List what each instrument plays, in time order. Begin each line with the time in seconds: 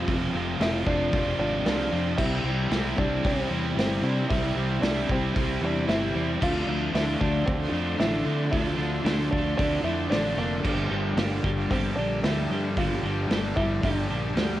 Already playing: distorted electric guitar F3, clean electric guitar C4 D4, five-string banjo F4
0.07 fingered electric bass F1, overdriven electric guitar F2 C3 F3 G#3 C4 F4, kick, open hi-hat
0.32 fingered electric bass F1, overdriven electric guitar F2 C3 F3 G#3 C4 F4
0.59 fingered electric bass F1, overdriven electric guitar F2 C3 F3 G#3 C4 F4, clean electric guitar D4, five-string banjo E4, snare, open hi-hat
0.86 fingered electric bass F1, overdriven electric guitar F2 C3 F3 G#3 C4 F4, five-string banjo D4, kick
1.13 fingered electric bass F1, overdriven electric guitar F2 C3 F3 G#3 C4 F4, kick, open hi-hat
1.38 fingered electric bass G#1, overdriven electric guitar F2 C3 F3 G#3 C4 F4, clean electric guitar D4, five-string banjo D4
1.64 fingered electric bass C2, overdriven electric guitar F2 C3 F3 G#3 C4 F4, five-string banjo D4, snare, open hi-hat
1.69 distorted electric guitar F3
1.91 overdriven electric guitar F2 C3 F3 G#3 C4 F4, fingered electric bass F2
2.18 fingered electric bass C2, overdriven electric guitar C3 E3 G3 C4 E4, five-string banjo E4, kick, crash
2.44 fingered electric bass C2, overdriven electric guitar C3 G3 C4 E4
2.69 fingered electric bass C2, overdriven electric guitar C3 E3 G3 C4 E4, snare, open hi-hat
2.96 fingered electric bass C2, overdriven electric guitar C3 G3 C4 E4, five-string banjo D4, kick
3.22 fingered electric bass C2, overdriven electric guitar C3 E3 G3 C4 E4, five-string banjo C4, kick, open hi-hat
3.49 fingered electric bass E2, overdriven electric guitar C3 G3 C4 E4
3.75 fingered electric bass G1, overdriven electric guitar C3 E3 G3 C4 E4, snare, open hi-hat
3.79 five-string banjo C4
4.02 overdriven electric guitar C3 G3 C4 E4, fingered electric bass C3, five-string banjo D4
4.29 fingered electric bass C2, overdriven electric guitar C3 E3 G3 C4 E4, five-string banjo E4, kick, open hi-hat
4.55 fingered electric bass C2, overdriven electric guitar C3 G3 C4 E4
4.81 fingered electric bass C2, overdriven electric guitar C3 E3 G3 C4 E4, five-string banjo D4, snare, open hi-hat
5.07 fingered electric bass C2, overdriven electric guitar C3 G3 C4 E4, five-string banjo C4, kick
5.33 fingered electric bass C2, overdriven electric guitar C3 E3 G3 C4 E4, kick, open hi-hat
5.61 fingered electric bass E2, overdriven electric guitar C3 G3 C4 E4, five-string banjo D4
5.87 fingered electric bass G1, overdriven electric guitar C3 E3 G3 C4 E4, five-string banjo E4, snare, open hi-hat
6.13 fingered electric bass E2, overdriven electric guitar C3 G3 C4 E4
6.40 fingered electric bass D2, overdriven electric guitar D3 A3 D4 F4, clean electric guitar F3, five-string banjo F4, kick, crash
6.67 fingered electric bass D2, overdriven electric guitar D3 A3 D4 F4, clean electric guitar F3
6.93 fingered electric bass D2, overdriven electric guitar D3 A3 D4 F4, five-string banjo E4, snare, open hi-hat
7.20 fingered electric bass D2, overdriven electric guitar D3 A3 D4 F4, clean electric guitar F3, five-string banjo D4, kick
7.46 fingered electric bass D2, overdriven electric guitar D3 A3 D4 F4, five-string banjo C4, clean electric guitar C4, kick, open hi-hat
7.71 fingered electric bass F2, overdriven electric guitar D3 D4 F4
7.76 overdriven electric guitar A3
7.98 fingered electric bass A1, overdriven electric guitar D3 A3 D4 F4, clean electric guitar F3, five-string banjo E4, snare, open hi-hat
8.24 overdriven electric guitar D3 D4 F4, fingered electric bass D3, clean electric guitar C4
8.28 overdriven electric guitar A3
8.51 fingered electric bass D2, overdriven electric guitar D3 A3 D4 F4, clean electric guitar F3, five-string banjo E4, kick, open hi-hat
8.62 five-string banjo F4
8.77 fingered electric bass D2, overdriven electric guitar D3 A3 D4 F4, clean electric guitar F3
8.82 overdriven electric guitar A3
9.04 fingered electric bass D2, overdriven electric guitar D3 A3 D4 F4, snare, open hi-hat
9.30 fingered electric bass D2, overdriven electric guitar D3 A3 D4 F4, clean electric guitar F3, five-string banjo D4, kick
9.57 fingered electric bass D2, overdriven electric guitar D3 A3 D4 F4, clean electric guitar C4, five-string banjo D4, kick, open hi-hat
9.83 fingered electric bass F2, overdriven electric guitar D3 A3 D4 F4, five-string banjo E4
10.10 fingered electric bass A1, overdriven electric guitar D3 A3 D4 F4, clean electric guitar F3, five-string banjo D4, snare, open hi-hat
10.37 fingered electric bass F1, overdriven electric guitar D3 A3 D4 F4, five-string banjo A#3, clean electric guitar C4
10.63 fingered electric bass G1, overdriven electric guitar G2 D3 G3 A#3 D4 G4, clean electric guitar F3, kick, crash
10.89 fingered electric bass G1, overdriven electric guitar G2 D3 G3 A#3 D4 G4, clean electric guitar F3
11.17 fingered electric bass G1, overdriven electric guitar G2 D3 G3 A#3 D4 G4, five-string banjo A#3, snare, open hi-hat
11.43 fingered electric bass G1, overdriven electric guitar G2 D3 G3 A#3 D4 G4, clean electric guitar F3, kick
11.71 fingered electric bass G1, overdriven electric guitar G2 D3 G3 A#3 D4 G4, five-string banjo C4, kick, open hi-hat
11.96 fingered electric bass A#1, overdriven electric guitar G2 D3 A#3 D4 G4, five-string banjo D4
12.00 overdriven electric guitar G3
12.23 fingered electric bass D2, overdriven electric guitar G2 D3 G3 A#3 D4 G4, clean electric guitar F3, five-string banjo E4, snare, open hi-hat
12.50 fingered electric bass G2, overdriven electric guitar G2 D3 G3 A#3 D4 G4
12.77 fingered electric bass G1, overdriven electric guitar G2 D3 G3 A#3 D4 G4, clean electric guitar F3, five-string banjo F4, kick, open hi-hat
13.03 fingered electric bass G1, overdriven electric guitar G2 D3 G3 A#3 D4 G4, clean electric guitar F3
13.29 fingered electric bass G1, overdriven electric guitar G2 D3 G3 A#3 D4 G4, snare, open hi-hat
13.56 fingered electric bass G1, overdriven electric guitar G2 D3 G3 A#3 D4 G4, clean electric guitar F3, five-string banjo E4, kick
13.83 fingered electric bass G1, overdriven electric guitar G2 D3 G3 A#3 D4 G4, five-string banjo D4, kick, open hi-hat
14.10 fingered electric bass A#1, overdriven electric guitar G2 D3 G3 A#3 D4 G4
14.35 fingered electric bass D2, overdriven electric guitar G2 D3 G3 A#3 D4 G4, clean electric guitar F3, snare, open hi-hat